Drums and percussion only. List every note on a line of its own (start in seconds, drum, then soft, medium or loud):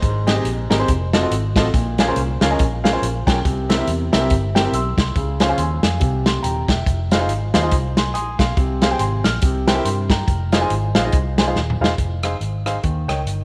0.02 kick loud
0.02 closed hi-hat medium
0.27 snare loud
0.27 closed hi-hat medium
0.45 closed hi-hat medium
0.71 snare loud
0.71 closed hi-hat medium
0.88 kick loud
0.88 closed hi-hat loud
1.13 snare loud
1.13 closed hi-hat medium
1.31 closed hi-hat loud
1.56 kick loud
1.56 snare loud
1.56 closed hi-hat medium
1.74 kick loud
1.74 closed hi-hat medium
1.98 snare loud
1.98 closed hi-hat medium
2.16 closed hi-hat medium
2.41 snare loud
2.41 closed hi-hat medium
2.59 kick loud
2.59 closed hi-hat loud
2.85 snare loud
2.85 closed hi-hat medium
3.03 closed hi-hat loud
3.27 kick loud
3.27 snare loud
3.27 closed hi-hat medium
3.45 kick loud
3.45 closed hi-hat medium
3.70 snare loud
3.70 closed hi-hat medium
3.87 closed hi-hat medium
4.13 snare loud
4.13 closed hi-hat medium
4.30 kick loud
4.30 closed hi-hat medium
4.56 snare loud
4.56 closed hi-hat medium
4.73 closed hi-hat loud
4.98 kick loud
4.98 snare loud
4.98 closed hi-hat medium
5.15 kick loud
5.15 closed hi-hat medium
5.40 snare loud
5.40 closed hi-hat medium
5.58 closed hi-hat medium
5.83 snare loud
5.83 closed hi-hat medium
6.01 kick loud
6.01 closed hi-hat medium
6.26 snare loud
6.26 closed hi-hat medium
6.44 closed hi-hat loud
6.68 kick loud
6.68 snare loud
6.68 closed hi-hat medium
6.86 kick loud
6.86 closed hi-hat medium
7.11 snare loud
7.11 closed hi-hat medium
7.29 closed hi-hat medium
7.54 snare loud
7.54 closed hi-hat medium
7.71 kick loud
7.71 closed hi-hat medium
7.97 snare loud
7.97 closed hi-hat medium
8.15 closed hi-hat loud
8.39 kick loud
8.39 snare loud
8.39 closed hi-hat medium
8.57 kick loud
8.57 closed hi-hat medium
8.81 snare loud
8.81 closed hi-hat medium
8.99 closed hi-hat medium
9.24 snare loud
9.24 closed hi-hat medium
9.41 kick loud
9.41 closed hi-hat loud
9.68 snare loud
9.68 closed hi-hat medium
9.85 closed hi-hat loud
10.10 kick loud
10.10 snare loud
10.10 closed hi-hat medium
10.28 kick loud
10.28 closed hi-hat medium
10.52 snare loud
10.52 closed hi-hat medium
10.70 closed hi-hat medium
10.95 snare loud
10.95 closed hi-hat medium
11.12 kick loud
11.12 closed hi-hat medium
11.38 snare loud
11.38 closed hi-hat medium
11.56 snare medium
11.70 mid tom medium
11.84 snare loud
11.98 kick medium
11.98 closed hi-hat medium
12.23 cross-stick loud
12.23 closed hi-hat medium
12.41 closed hi-hat medium
12.66 cross-stick medium
12.66 closed hi-hat medium
12.83 kick medium
12.83 closed hi-hat medium
13.09 cross-stick loud
13.09 closed hi-hat medium
13.27 closed hi-hat medium